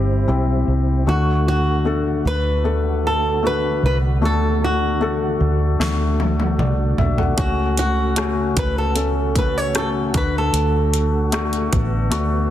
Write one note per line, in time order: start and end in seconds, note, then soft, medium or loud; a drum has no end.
0.00 0.25 G1 medium
0.00 1.03 G3 soft
0.00 0.28 C4 medium
0.00 1.04 C4 medium
0.00 0.28 E4 medium
0.00 1.04 E4 medium
0.00 0.24 G4 medium
0.00 0.29 G4 medium
0.28 0.65 B1 medium
0.28 1.03 C4 medium
0.28 1.03 E4 medium
0.28 1.03 G4 medium
0.68 1.04 C2 medium
1.06 2.21 D2 medium
1.06 7.34 D3 soft
1.06 2.21 D3 soft
1.06 11.68 A3 soft
1.06 1.82 A3 medium
1.06 1.82 D4 medium
1.06 7.34 F#4 medium
1.06 1.82 F#4 medium
1.06 1.47 F#4 medium
1.48 2.27 F#4 medium
1.85 2.60 A3 medium
1.85 2.61 D4 medium
1.85 2.61 A4 medium
2.25 3.79 D2 medium
2.25 3.06 B4 medium
2.64 3.39 A3 medium
2.64 3.40 D4 medium
2.64 3.40 A4 medium
3.07 3.46 A4 medium
3.43 4.18 A3 medium
3.43 4.18 D4 soft
3.43 4.19 F#4 medium
3.43 3.82 B4 medium
3.83 4.22 C2 medium
3.83 3.96 B4 medium
4.22 5.37 D2 medium
4.22 5.37 D3 soft
4.22 4.97 A3 medium
4.22 4.97 D4 medium
4.22 4.98 F#4 medium
4.22 4.64 A4 medium
4.64 5.78 F#4 medium
5.01 5.76 A3 medium
5.01 5.76 D4 medium
5.01 5.77 A4 medium
5.40 5.77 D2 medium
5.80 6.60 D2 medium
5.80 6.55 A3 medium
5.80 6.55 D4 medium
5.80 6.56 F#4 medium
5.80 snare soft
6.20 high tom medium
6.40 high tom medium
6.58 6.95 C2 medium
6.58 6.97 F#4 soft
6.58 6.97 D5 medium
6.58 mid tom medium
6.98 7.35 B1 medium
6.98 7.17 E5 medium
6.98 floor tom medium
7.18 7.56 A4 soft
7.18 7.56 F#5 soft
7.18 floor tom medium
7.37 8.52 C#2 medium
7.37 8.52 C#3 soft
7.37 10.12 C#3 medium
7.37 8.13 A3 medium
7.37 8.13 C#4 medium
7.37 12.50 F#4 medium
7.37 8.13 F#4 medium
7.37 7.76 F#4 medium
7.37 kick medium
7.37 closed hi-hat medium
7.77 8.58 F#4 medium
7.77 closed hi-hat medium
8.16 8.92 A3 medium
8.16 8.92 C#4 medium
8.16 8.92 F#4 medium
8.16 cross-stick medium
8.16 closed hi-hat medium
8.57 10.11 C#2 medium
8.57 8.78 B4 medium
8.57 kick medium
8.57 closed hi-hat medium
8.78 9.38 A4 medium
8.95 9.71 A3 medium
8.95 9.71 C#4 medium
8.95 9.71 A4 medium
8.95 closed hi-hat medium
9.36 9.58 B4 medium
9.36 kick medium
9.36 closed hi-hat medium
9.58 9.77 C#5 medium
9.74 10.13 A3 medium
9.74 10.15 C#4 medium
9.74 10.14 F#4 medium
9.74 9.88 A4 medium
9.74 cross-stick medium
9.74 closed hi-hat medium
10.14 10.51 D2 medium
10.14 12.50 D3 medium
10.14 11.29 D3 medium
10.14 11.27 A3 medium
10.14 11.27 D4 medium
10.14 11.27 F#4 medium
10.14 10.36 B4 medium
10.14 kick medium
10.14 closed hi-hat medium
10.38 12.50 A4 medium
10.53 11.68 D2 medium
10.53 closed hi-hat medium
10.94 closed hi-hat medium
11.32 12.08 A3 medium
11.32 12.08 D4 medium
11.32 12.08 F#4 medium
11.32 cross-stick medium
11.32 closed hi-hat medium
11.53 closed hi-hat soft
11.72 12.11 A1 medium
11.72 12.50 B3 medium
11.72 kick medium
11.72 closed hi-hat medium
12.11 12.50 D2 medium
12.11 12.50 A3 medium
12.11 12.50 D4 medium
12.11 12.50 F#4 medium
12.11 closed hi-hat medium